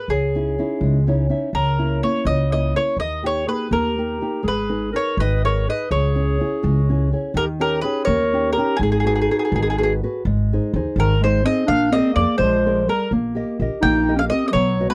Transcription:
0.08 upright bass C#2, nylon-string guitar C#3, mandolin G#4
0.35 nylon-string guitar C#4 D#4 E4
0.58 nylon-string guitar C#4 D#4 E4
0.81 upright bass C#2, nylon-string guitar G#3
1.07 nylon-string guitar C#4 D#4 E4 C#5
1.29 nylon-string guitar C#4 D#4 E4 E5
1.53 upright bass C#2, nylon-string guitar C#3, mandolin A#4
1.78 nylon-string guitar A#3 C#4 E4
2.03 nylon-string guitar A#3 C#4 E4, mandolin C#5
2.25 upright bass C#2, nylon-string guitar C#3, mandolin D#5
2.52 nylon-string guitar A#3 C#4 E4, mandolin D#5
2.76 nylon-string guitar A#3 C#4 E4, mandolin C#5
2.97 upright bass D#2, nylon-string guitar D#3, mandolin D#5
3.23 nylon-string guitar A#3 D#4 G4, mandolin C#5
3.46 nylon-string guitar A#3 D#4 G4, clarinet G#4, mandolin B4
3.70 upright bass D#2, nylon-string guitar A#3, clarinet G4, mandolin A#4
3.98 nylon-string guitar A#3 D#4 G4
4.21 nylon-string guitar A#3 D#4 G4
4.43 upright bass G#1, nylon-string guitar G#3, clarinet G#4
4.48 mandolin B4
4.70 nylon-string guitar D#4 G#4 B4
4.92 nylon-string guitar D#4 G#4 B4, clarinet A#4, mandolin C#5
5.17 upright bass G#1, nylon-string guitar D#3, clarinet B4, mandolin D#5
5.44 nylon-string guitar D#4 G#4 B4, clarinet A#4, mandolin C#5
5.67 nylon-string guitar D#4 G#4 B4, clarinet B4, mandolin D#5
5.91 upright bass C#2, nylon-string guitar C#3, clarinet G#4, mandolin C#5
6.15 nylon-string guitar C#4 E4 G#4
6.41 nylon-string guitar C#4 E4 G#4
6.63 upright bass C#2, nylon-string guitar G#3
6.89 nylon-string guitar C#4 E4 G#4
7.12 nylon-string guitar C#4 E4 G#4
7.34 upright bass D#2, nylon-string guitar D#3, clarinet G4, mandolin A#4
7.59 nylon-string guitar C#4 D#4 G4, clarinet G4, mandolin A#4
7.81 nylon-string guitar C#4 D#4 G4, clarinet G#4, mandolin B4
8.05 upright bass D#2, nylon-string guitar A#3, clarinet A#4, mandolin C#5
8.33 nylon-string guitar C#4 D#4 G4
8.53 clarinet G4, mandolin A#4
8.57 nylon-string guitar C#4 D#4 G4
8.77 upright bass G#1, nylon-string guitar G#3, clarinet D#4, mandolin G#4
8.83 mandolin G#4
8.92 mandolin G#4
9.00 mandolin G#4
9.04 nylon-string guitar F#4 G#4 B4, mandolin G#4
9.15 mandolin G#4
9.22 mandolin G#4
9.30 nylon-string guitar F#4 G#4 B4, mandolin G#4
9.39 mandolin G#4
9.45 mandolin G#4
9.52 upright bass G#1, nylon-string guitar D#3, mandolin G#4
9.62 mandolin G#4
9.70 mandolin G#4
9.78 nylon-string guitar F#4 G#4 B4, mandolin G#4
9.83 mandolin G#4
10.03 nylon-string guitar F#4 G#4 B4
10.25 upright bass G#1, nylon-string guitar G#3
10.53 nylon-string guitar D#4 G#4 C5
10.73 upright bass D#2, nylon-string guitar D#4 G#4 C5
10.96 upright bass G#1, clarinet D#3, nylon-string guitar D#3, mandolin A#4
11.21 clarinet G#3, nylon-string guitar D#4 G#4 C5, mandolin C5
11.44 clarinet C4, nylon-string guitar D#4 G#4 C5, mandolin D#5
11.66 upright bass A#1, clarinet D4, mandolin F5
11.71 nylon-string guitar A#3
11.92 clarinet C4, nylon-string guitar G#4 D5, mandolin D#5
11.96 nylon-string guitar A#4
12.13 upright bass F2, clarinet A#3, mandolin D5
12.18 nylon-string guitar G#4 A#4 D5
12.38 upright bass A#1, clarinet G#3, mandolin C5
12.43 nylon-string guitar F3
12.66 nylon-string guitar G#4 A#4 D5
12.86 clarinet G3, nylon-string guitar G#4 A#4 D5, mandolin A#4
13.11 upright bass A#1, nylon-string guitar A#3
13.35 nylon-string guitar G4 A#4 D#5
13.60 upright bass A#1, nylon-string guitar G4 A#4 D#5
13.81 upright bass A#1, nylon-string guitar A#3, clarinet D#4, mandolin G5
14.09 nylon-string guitar G4 A#4 D#5
14.16 clarinet C#4, mandolin F5
14.30 clarinet C4, nylon-string guitar G4 A#4 D#5, mandolin D#5
14.46 clarinet C4, mandolin D#5
14.51 upright bass B1, clarinet F#3, nylon-string guitar B3, mandolin C#5
14.81 nylon-string guitar F#4 B4 D#5
14.89 clarinet G#3, mandolin B4

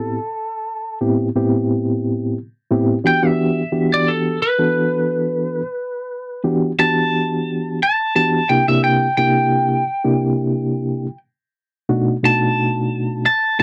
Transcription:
Already playing: reed electric piano A2 B3 C4 E4 G4, lead electric guitar A4
1.01 reed electric piano A2 B3 C4 E4 G4
1.36 reed electric piano A2 B3 C4 E4 G4
2.71 reed electric piano A2 B3 C4 E4 G4
3.04 reed electric piano E3 B3 D4 F#4 G4, lead electric guitar G5
3.22 reed electric piano E3 B3 D4 F#4 G4
3.27 lead electric guitar E5
3.72 reed electric piano E3 B3 D4 F#4 G4
3.94 lead electric guitar D5
4.08 lead electric guitar A4
4.42 lead electric guitar B4
4.59 reed electric piano E3 B3 D4 F#4 A4
6.44 reed electric piano E3 B3 D4 F#4 G4
6.78 reed electric piano E3 B3 D4 F#4 G4, lead electric guitar A5
7.83 lead electric guitar A5
8.15 reed electric piano E3 B3 D4 F#4 G4, lead electric guitar A5
8.49 reed electric piano C3 A#3 D4 E4 G4, lead electric guitar G5
8.68 reed electric piano C3 A#3 D4 E4 G4, lead electric guitar E5
8.84 lead electric guitar G5
9.17 reed electric piano C3 A#3 D4 E4 G4, lead electric guitar G5
10.04 reed electric piano C3 A#3 D4 E4 G4
11.89 reed electric piano B2 A3 D4 D#4 F#4
12.23 reed electric piano B2 A3 D4 D#4 F#4, lead electric guitar A5
13.26 lead electric guitar A5
13.59 reed electric piano B2 A3 D4 F#4, lead electric guitar A5

